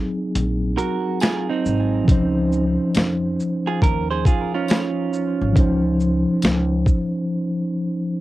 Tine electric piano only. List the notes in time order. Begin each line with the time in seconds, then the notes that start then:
Already playing: F#3 C4 D#4 G#4
2.04 F3 C#4
2.09 D#4 C5
5.53 F3 C#4
5.57 D#4 C5